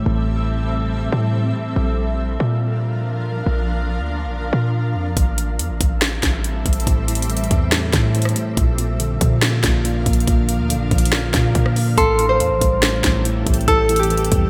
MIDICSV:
0, 0, Header, 1, 7, 480
1, 0, Start_track
1, 0, Tempo, 425532
1, 69, Time_signature, 4, 2, 24, 8
1, 16355, End_track
2, 0, Start_track
2, 0, Title_t, "Synth bell"
2, 0, Program_c, 0, 98
2, 13511, Note_on_c, 0, 84, 110
2, 14905, Note_off_c, 0, 84, 0
2, 15428, Note_on_c, 0, 88, 92
2, 16344, Note_off_c, 0, 88, 0
2, 16355, End_track
3, 0, Start_track
3, 0, Title_t, "Nylon-string guitar"
3, 0, Program_c, 1, 24
3, 13509, Note_on_c, 1, 69, 99
3, 13847, Note_off_c, 1, 69, 0
3, 13865, Note_on_c, 1, 72, 81
3, 15382, Note_off_c, 1, 72, 0
3, 15433, Note_on_c, 1, 69, 111
3, 15770, Note_off_c, 1, 69, 0
3, 15785, Note_on_c, 1, 67, 78
3, 16355, Note_off_c, 1, 67, 0
3, 16355, End_track
4, 0, Start_track
4, 0, Title_t, "Ambient pad"
4, 0, Program_c, 2, 92
4, 0, Note_on_c, 2, 55, 88
4, 0, Note_on_c, 2, 60, 80
4, 0, Note_on_c, 2, 69, 80
4, 0, Note_on_c, 2, 76, 94
4, 1951, Note_off_c, 2, 55, 0
4, 1951, Note_off_c, 2, 60, 0
4, 1951, Note_off_c, 2, 69, 0
4, 1951, Note_off_c, 2, 76, 0
4, 1988, Note_on_c, 2, 53, 87
4, 1988, Note_on_c, 2, 62, 82
4, 1988, Note_on_c, 2, 77, 97
4, 1989, Note_on_c, 2, 70, 82
4, 5790, Note_off_c, 2, 53, 0
4, 5790, Note_off_c, 2, 62, 0
4, 5790, Note_off_c, 2, 77, 0
4, 5791, Note_off_c, 2, 70, 0
4, 5828, Note_on_c, 2, 55, 86
4, 5828, Note_on_c, 2, 60, 79
4, 5828, Note_on_c, 2, 69, 80
4, 5828, Note_on_c, 2, 76, 95
4, 9630, Note_off_c, 2, 55, 0
4, 9630, Note_off_c, 2, 60, 0
4, 9630, Note_off_c, 2, 69, 0
4, 9630, Note_off_c, 2, 76, 0
4, 9668, Note_on_c, 2, 62, 81
4, 9669, Note_on_c, 2, 53, 84
4, 9669, Note_on_c, 2, 70, 79
4, 9669, Note_on_c, 2, 77, 96
4, 13470, Note_off_c, 2, 62, 0
4, 13470, Note_off_c, 2, 70, 0
4, 13470, Note_off_c, 2, 77, 0
4, 13471, Note_off_c, 2, 53, 0
4, 13510, Note_on_c, 2, 67, 81
4, 13510, Note_on_c, 2, 69, 98
4, 13511, Note_on_c, 2, 52, 92
4, 13511, Note_on_c, 2, 60, 82
4, 16355, Note_off_c, 2, 52, 0
4, 16355, Note_off_c, 2, 60, 0
4, 16355, Note_off_c, 2, 67, 0
4, 16355, Note_off_c, 2, 69, 0
4, 16355, End_track
5, 0, Start_track
5, 0, Title_t, "Tine electric piano"
5, 0, Program_c, 3, 4
5, 0, Control_c, 3, 64, 127
5, 0, Note_on_c, 3, 45, 90
5, 0, Note_on_c, 3, 52, 81
5, 0, Note_on_c, 3, 55, 83
5, 0, Note_on_c, 3, 57, 85
5, 2001, Control_c, 3, 64, 0
5, 2007, Note_off_c, 3, 52, 0
5, 2009, Note_off_c, 3, 45, 0
5, 2009, Note_off_c, 3, 55, 0
5, 2011, Note_off_c, 3, 57, 0
5, 6071, Control_c, 3, 64, 127
5, 7753, Note_on_c, 3, 45, 90
5, 7979, Note_off_c, 3, 45, 0
5, 7993, Note_on_c, 3, 45, 76
5, 8228, Note_on_c, 3, 52, 84
5, 8469, Note_on_c, 3, 55, 83
5, 8701, Note_off_c, 3, 45, 0
5, 8715, Note_on_c, 3, 45, 93
5, 8925, Note_off_c, 3, 45, 0
5, 8939, Note_on_c, 3, 45, 79
5, 9178, Note_off_c, 3, 45, 0
5, 9192, Note_on_c, 3, 45, 87
5, 9429, Note_off_c, 3, 52, 0
5, 9429, Note_on_c, 3, 57, 84
5, 9669, Note_off_c, 3, 55, 0
5, 9669, Note_off_c, 3, 57, 0
5, 9670, Note_off_c, 3, 45, 0
5, 9673, Note_on_c, 3, 46, 94
5, 9684, Control_c, 3, 64, 0
5, 9875, Control_c, 3, 64, 127
5, 9895, Note_off_c, 3, 46, 0
5, 9908, Note_on_c, 3, 46, 76
5, 10144, Note_on_c, 3, 50, 90
5, 10388, Note_on_c, 3, 53, 85
5, 10621, Note_off_c, 3, 46, 0
5, 10634, Note_on_c, 3, 46, 93
5, 10862, Note_off_c, 3, 46, 0
5, 10876, Note_on_c, 3, 46, 81
5, 11095, Note_off_c, 3, 46, 0
5, 11109, Note_on_c, 3, 46, 84
5, 11346, Note_off_c, 3, 50, 0
5, 11348, Note_on_c, 3, 58, 82
5, 11579, Note_off_c, 3, 46, 0
5, 11589, Note_off_c, 3, 53, 0
5, 11592, Note_on_c, 3, 46, 92
5, 11815, Note_off_c, 3, 46, 0
5, 11829, Note_on_c, 3, 46, 75
5, 12069, Note_on_c, 3, 50, 80
5, 12307, Note_on_c, 3, 53, 81
5, 12531, Note_off_c, 3, 46, 0
5, 12545, Note_on_c, 3, 46, 84
5, 12549, Note_off_c, 3, 58, 0
5, 12780, Note_off_c, 3, 46, 0
5, 12793, Note_on_c, 3, 46, 77
5, 13013, Note_off_c, 3, 46, 0
5, 13026, Note_on_c, 3, 46, 87
5, 13266, Note_on_c, 3, 58, 77
5, 13269, Note_off_c, 3, 50, 0
5, 13507, Note_off_c, 3, 58, 0
5, 13508, Note_off_c, 3, 46, 0
5, 13508, Note_off_c, 3, 53, 0
5, 13508, Note_on_c, 3, 45, 98
5, 13525, Control_c, 3, 64, 0
5, 13685, Control_c, 3, 64, 127
5, 13737, Note_off_c, 3, 45, 0
5, 13750, Note_on_c, 3, 45, 75
5, 13991, Note_on_c, 3, 52, 84
5, 14229, Note_on_c, 3, 55, 81
5, 14442, Note_off_c, 3, 45, 0
5, 14455, Note_on_c, 3, 45, 94
5, 14689, Note_off_c, 3, 45, 0
5, 14703, Note_on_c, 3, 45, 80
5, 14935, Note_off_c, 3, 45, 0
5, 14949, Note_on_c, 3, 45, 93
5, 15190, Note_off_c, 3, 52, 0
5, 15192, Note_on_c, 3, 57, 89
5, 15421, Note_off_c, 3, 45, 0
5, 15429, Note_off_c, 3, 55, 0
5, 15434, Note_on_c, 3, 45, 94
5, 15659, Note_off_c, 3, 45, 0
5, 15673, Note_on_c, 3, 45, 80
5, 15907, Note_on_c, 3, 52, 87
5, 16149, Note_on_c, 3, 55, 86
5, 16355, Note_off_c, 3, 45, 0
5, 16355, Note_off_c, 3, 52, 0
5, 16355, Note_off_c, 3, 55, 0
5, 16355, Note_off_c, 3, 57, 0
5, 16355, End_track
6, 0, Start_track
6, 0, Title_t, "808-style bass"
6, 0, Program_c, 4, 38
6, 69, Note_on_c, 4, 33, 108
6, 1224, Note_off_c, 4, 33, 0
6, 1269, Note_on_c, 4, 45, 101
6, 1730, Note_off_c, 4, 45, 0
6, 1988, Note_on_c, 4, 34, 110
6, 2680, Note_off_c, 4, 34, 0
6, 2709, Note_on_c, 4, 46, 101
6, 3864, Note_off_c, 4, 46, 0
6, 3908, Note_on_c, 4, 34, 108
6, 4508, Note_on_c, 4, 38, 97
6, 4525, Note_off_c, 4, 34, 0
6, 4808, Note_on_c, 4, 34, 99
6, 4825, Note_off_c, 4, 38, 0
6, 5093, Note_off_c, 4, 34, 0
6, 5107, Note_on_c, 4, 46, 110
6, 5588, Note_on_c, 4, 41, 99
6, 5605, Note_off_c, 4, 46, 0
6, 5817, Note_off_c, 4, 41, 0
6, 5829, Note_on_c, 4, 33, 106
6, 6309, Note_on_c, 4, 40, 98
6, 6325, Note_off_c, 4, 33, 0
6, 6429, Note_on_c, 4, 33, 98
6, 6446, Note_off_c, 4, 40, 0
6, 6543, Note_off_c, 4, 33, 0
6, 6550, Note_on_c, 4, 33, 102
6, 7010, Note_off_c, 4, 33, 0
6, 7029, Note_on_c, 4, 33, 105
6, 7490, Note_off_c, 4, 33, 0
6, 7508, Note_on_c, 4, 33, 104
6, 7739, Note_off_c, 4, 33, 0
6, 7749, Note_on_c, 4, 33, 109
6, 8440, Note_off_c, 4, 33, 0
6, 8471, Note_on_c, 4, 40, 103
6, 8931, Note_off_c, 4, 40, 0
6, 8949, Note_on_c, 4, 45, 105
6, 9410, Note_off_c, 4, 45, 0
6, 9670, Note_on_c, 4, 34, 111
6, 10361, Note_off_c, 4, 34, 0
6, 10390, Note_on_c, 4, 46, 103
6, 10851, Note_off_c, 4, 46, 0
6, 10870, Note_on_c, 4, 34, 107
6, 11330, Note_off_c, 4, 34, 0
6, 11349, Note_on_c, 4, 34, 104
6, 11580, Note_off_c, 4, 34, 0
6, 11590, Note_on_c, 4, 34, 105
6, 11948, Note_on_c, 4, 38, 103
6, 11965, Note_off_c, 4, 34, 0
6, 12129, Note_on_c, 4, 34, 98
6, 12146, Note_off_c, 4, 38, 0
6, 12300, Note_off_c, 4, 34, 0
6, 12310, Note_on_c, 4, 34, 105
6, 12770, Note_off_c, 4, 34, 0
6, 12789, Note_on_c, 4, 46, 101
6, 13019, Note_off_c, 4, 46, 0
6, 13030, Note_on_c, 4, 46, 105
6, 13490, Note_off_c, 4, 46, 0
6, 13509, Note_on_c, 4, 33, 103
6, 13989, Note_on_c, 4, 40, 102
6, 14006, Note_off_c, 4, 33, 0
6, 14109, Note_on_c, 4, 33, 97
6, 14126, Note_off_c, 4, 40, 0
6, 14223, Note_off_c, 4, 33, 0
6, 14230, Note_on_c, 4, 33, 105
6, 14690, Note_off_c, 4, 33, 0
6, 14709, Note_on_c, 4, 33, 106
6, 15170, Note_off_c, 4, 33, 0
6, 15189, Note_on_c, 4, 33, 104
6, 15419, Note_off_c, 4, 33, 0
6, 15430, Note_on_c, 4, 33, 106
6, 16121, Note_off_c, 4, 33, 0
6, 16150, Note_on_c, 4, 40, 107
6, 16355, Note_off_c, 4, 40, 0
6, 16355, End_track
7, 0, Start_track
7, 0, Title_t, "Drums"
7, 5829, Note_on_c, 9, 36, 109
7, 5829, Note_on_c, 9, 42, 69
7, 5942, Note_off_c, 9, 36, 0
7, 5942, Note_off_c, 9, 42, 0
7, 6068, Note_on_c, 9, 42, 73
7, 6181, Note_off_c, 9, 42, 0
7, 6310, Note_on_c, 9, 42, 87
7, 6423, Note_off_c, 9, 42, 0
7, 6549, Note_on_c, 9, 42, 82
7, 6550, Note_on_c, 9, 36, 92
7, 6662, Note_off_c, 9, 36, 0
7, 6662, Note_off_c, 9, 42, 0
7, 6788, Note_on_c, 9, 38, 108
7, 6790, Note_on_c, 9, 42, 64
7, 6901, Note_off_c, 9, 38, 0
7, 6902, Note_off_c, 9, 42, 0
7, 7028, Note_on_c, 9, 38, 87
7, 7028, Note_on_c, 9, 42, 76
7, 7029, Note_on_c, 9, 36, 94
7, 7141, Note_off_c, 9, 36, 0
7, 7141, Note_off_c, 9, 38, 0
7, 7141, Note_off_c, 9, 42, 0
7, 7269, Note_on_c, 9, 42, 67
7, 7381, Note_off_c, 9, 42, 0
7, 7509, Note_on_c, 9, 36, 97
7, 7509, Note_on_c, 9, 42, 73
7, 7589, Note_off_c, 9, 42, 0
7, 7589, Note_on_c, 9, 42, 61
7, 7621, Note_off_c, 9, 36, 0
7, 7669, Note_off_c, 9, 42, 0
7, 7669, Note_on_c, 9, 42, 44
7, 7749, Note_off_c, 9, 42, 0
7, 7749, Note_on_c, 9, 36, 113
7, 7749, Note_on_c, 9, 42, 71
7, 7862, Note_off_c, 9, 36, 0
7, 7862, Note_off_c, 9, 42, 0
7, 7989, Note_on_c, 9, 42, 75
7, 8069, Note_off_c, 9, 42, 0
7, 8069, Note_on_c, 9, 42, 69
7, 8149, Note_off_c, 9, 42, 0
7, 8149, Note_on_c, 9, 42, 62
7, 8230, Note_off_c, 9, 42, 0
7, 8230, Note_on_c, 9, 42, 54
7, 8309, Note_off_c, 9, 42, 0
7, 8309, Note_on_c, 9, 42, 51
7, 8389, Note_off_c, 9, 42, 0
7, 8389, Note_on_c, 9, 42, 44
7, 8470, Note_off_c, 9, 42, 0
7, 8470, Note_on_c, 9, 36, 86
7, 8470, Note_on_c, 9, 42, 74
7, 8583, Note_off_c, 9, 36, 0
7, 8583, Note_off_c, 9, 42, 0
7, 8708, Note_on_c, 9, 38, 113
7, 8709, Note_on_c, 9, 42, 63
7, 8821, Note_off_c, 9, 38, 0
7, 8822, Note_off_c, 9, 42, 0
7, 8949, Note_on_c, 9, 36, 96
7, 8949, Note_on_c, 9, 38, 87
7, 8949, Note_on_c, 9, 42, 80
7, 9061, Note_off_c, 9, 38, 0
7, 9062, Note_off_c, 9, 36, 0
7, 9062, Note_off_c, 9, 42, 0
7, 9190, Note_on_c, 9, 42, 61
7, 9270, Note_off_c, 9, 42, 0
7, 9270, Note_on_c, 9, 42, 61
7, 9310, Note_on_c, 9, 37, 88
7, 9349, Note_off_c, 9, 42, 0
7, 9349, Note_on_c, 9, 42, 57
7, 9423, Note_off_c, 9, 37, 0
7, 9429, Note_off_c, 9, 42, 0
7, 9429, Note_on_c, 9, 42, 78
7, 9542, Note_off_c, 9, 42, 0
7, 9669, Note_on_c, 9, 42, 71
7, 9670, Note_on_c, 9, 36, 107
7, 9782, Note_off_c, 9, 36, 0
7, 9782, Note_off_c, 9, 42, 0
7, 9909, Note_on_c, 9, 42, 70
7, 10021, Note_off_c, 9, 42, 0
7, 10150, Note_on_c, 9, 42, 89
7, 10263, Note_off_c, 9, 42, 0
7, 10390, Note_on_c, 9, 36, 90
7, 10390, Note_on_c, 9, 42, 85
7, 10502, Note_off_c, 9, 42, 0
7, 10503, Note_off_c, 9, 36, 0
7, 10629, Note_on_c, 9, 38, 109
7, 10630, Note_on_c, 9, 42, 65
7, 10742, Note_off_c, 9, 38, 0
7, 10743, Note_off_c, 9, 42, 0
7, 10869, Note_on_c, 9, 36, 92
7, 10869, Note_on_c, 9, 38, 90
7, 10869, Note_on_c, 9, 42, 78
7, 10982, Note_off_c, 9, 36, 0
7, 10982, Note_off_c, 9, 38, 0
7, 10982, Note_off_c, 9, 42, 0
7, 11110, Note_on_c, 9, 42, 71
7, 11223, Note_off_c, 9, 42, 0
7, 11349, Note_on_c, 9, 36, 95
7, 11350, Note_on_c, 9, 42, 73
7, 11430, Note_off_c, 9, 42, 0
7, 11430, Note_on_c, 9, 42, 59
7, 11462, Note_off_c, 9, 36, 0
7, 11510, Note_off_c, 9, 42, 0
7, 11510, Note_on_c, 9, 42, 45
7, 11590, Note_off_c, 9, 42, 0
7, 11590, Note_on_c, 9, 36, 112
7, 11590, Note_on_c, 9, 42, 73
7, 11703, Note_off_c, 9, 36, 0
7, 11703, Note_off_c, 9, 42, 0
7, 11829, Note_on_c, 9, 42, 71
7, 11942, Note_off_c, 9, 42, 0
7, 12071, Note_on_c, 9, 42, 87
7, 12184, Note_off_c, 9, 42, 0
7, 12310, Note_on_c, 9, 36, 89
7, 12310, Note_on_c, 9, 42, 48
7, 12389, Note_off_c, 9, 42, 0
7, 12389, Note_on_c, 9, 42, 66
7, 12423, Note_off_c, 9, 36, 0
7, 12469, Note_off_c, 9, 42, 0
7, 12469, Note_on_c, 9, 42, 81
7, 12549, Note_on_c, 9, 38, 110
7, 12550, Note_off_c, 9, 42, 0
7, 12550, Note_on_c, 9, 42, 62
7, 12662, Note_off_c, 9, 38, 0
7, 12663, Note_off_c, 9, 42, 0
7, 12788, Note_on_c, 9, 38, 89
7, 12789, Note_on_c, 9, 36, 97
7, 12789, Note_on_c, 9, 42, 80
7, 12901, Note_off_c, 9, 38, 0
7, 12902, Note_off_c, 9, 36, 0
7, 12902, Note_off_c, 9, 42, 0
7, 13029, Note_on_c, 9, 42, 70
7, 13030, Note_on_c, 9, 36, 88
7, 13142, Note_off_c, 9, 36, 0
7, 13142, Note_off_c, 9, 42, 0
7, 13149, Note_on_c, 9, 37, 90
7, 13262, Note_off_c, 9, 37, 0
7, 13269, Note_on_c, 9, 46, 80
7, 13382, Note_off_c, 9, 46, 0
7, 13509, Note_on_c, 9, 36, 112
7, 13509, Note_on_c, 9, 42, 75
7, 13622, Note_off_c, 9, 36, 0
7, 13622, Note_off_c, 9, 42, 0
7, 13749, Note_on_c, 9, 42, 74
7, 13861, Note_off_c, 9, 42, 0
7, 13990, Note_on_c, 9, 42, 86
7, 14103, Note_off_c, 9, 42, 0
7, 14229, Note_on_c, 9, 42, 83
7, 14230, Note_on_c, 9, 36, 90
7, 14342, Note_off_c, 9, 42, 0
7, 14343, Note_off_c, 9, 36, 0
7, 14469, Note_on_c, 9, 38, 117
7, 14470, Note_on_c, 9, 42, 66
7, 14582, Note_off_c, 9, 38, 0
7, 14583, Note_off_c, 9, 42, 0
7, 14708, Note_on_c, 9, 38, 92
7, 14709, Note_on_c, 9, 36, 94
7, 14709, Note_on_c, 9, 42, 83
7, 14821, Note_off_c, 9, 38, 0
7, 14822, Note_off_c, 9, 36, 0
7, 14822, Note_off_c, 9, 42, 0
7, 14949, Note_on_c, 9, 42, 71
7, 15062, Note_off_c, 9, 42, 0
7, 15189, Note_on_c, 9, 36, 98
7, 15190, Note_on_c, 9, 42, 75
7, 15269, Note_off_c, 9, 42, 0
7, 15269, Note_on_c, 9, 42, 61
7, 15302, Note_off_c, 9, 36, 0
7, 15349, Note_off_c, 9, 42, 0
7, 15349, Note_on_c, 9, 42, 46
7, 15429, Note_on_c, 9, 36, 117
7, 15430, Note_off_c, 9, 42, 0
7, 15430, Note_on_c, 9, 42, 74
7, 15542, Note_off_c, 9, 36, 0
7, 15542, Note_off_c, 9, 42, 0
7, 15669, Note_on_c, 9, 42, 75
7, 15749, Note_off_c, 9, 42, 0
7, 15749, Note_on_c, 9, 42, 70
7, 15829, Note_off_c, 9, 42, 0
7, 15829, Note_on_c, 9, 42, 64
7, 15909, Note_off_c, 9, 42, 0
7, 15909, Note_on_c, 9, 42, 56
7, 15989, Note_off_c, 9, 42, 0
7, 15989, Note_on_c, 9, 42, 50
7, 16069, Note_off_c, 9, 42, 0
7, 16069, Note_on_c, 9, 42, 47
7, 16149, Note_off_c, 9, 42, 0
7, 16149, Note_on_c, 9, 42, 78
7, 16150, Note_on_c, 9, 36, 92
7, 16262, Note_off_c, 9, 42, 0
7, 16263, Note_off_c, 9, 36, 0
7, 16355, End_track
0, 0, End_of_file